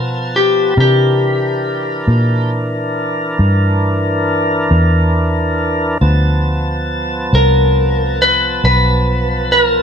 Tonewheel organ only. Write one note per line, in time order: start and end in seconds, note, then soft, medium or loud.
0.00 0.74 F3 medium
0.00 0.74 B3 medium
0.00 0.74 A5 medium
0.77 5.98 E3 medium
0.77 5.98 D4 medium
0.77 5.98 A#4 medium
6.01 9.82 F3 medium
6.01 9.82 B3 medium
6.01 9.82 A5 medium